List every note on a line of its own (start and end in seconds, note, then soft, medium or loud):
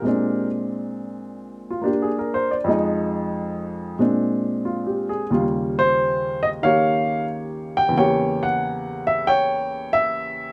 0.00 2.66 A#2 soft
0.00 2.66 G#3 soft
0.00 0.47 G4 soft
0.00 0.45 A#4 medium
0.05 2.68 C4 soft
0.05 1.82 D4 soft
1.70 1.90 F4 medium
1.82 2.68 A#3 soft
1.82 2.69 D4 medium
1.82 2.08 G4 soft
2.02 2.33 G#4 soft
2.19 2.47 A#4 medium
2.34 2.54 C5 medium
2.51 2.74 D5 medium
2.64 3.97 F2 medium
2.64 3.98 F3 medium
2.64 3.97 G#3 medium
2.69 4.00 D#4 medium
3.99 5.31 A#2 soft
3.99 5.31 G#3 soft
3.99 5.31 C4 soft
3.99 5.31 D4 medium
4.65 5.07 F4 soft
4.87 5.21 G4 soft
5.09 5.44 G#4 medium
5.30 7.94 D#2 soft
5.30 7.90 C#3 soft
5.30 7.95 G3 soft
5.30 7.95 F4 soft
5.79 6.39 C5 medium
6.43 6.48 D#5 medium
6.63 7.94 D#3 soft
6.63 7.94 A#3 soft
6.63 7.96 G4 soft
6.63 7.91 C#5 medium
6.63 7.25 F5 medium
7.77 7.96 G5 medium
7.89 10.52 E2 medium
7.89 10.52 C#3 soft
7.96 10.52 A#3 soft
7.96 10.52 G4 medium
7.96 9.24 C#5 medium
7.96 8.43 G5 medium
8.43 9.03 F#5 medium
9.07 9.27 E5 medium
9.27 10.52 C#5 medium
9.27 9.95 G5 medium
9.93 10.52 E5 medium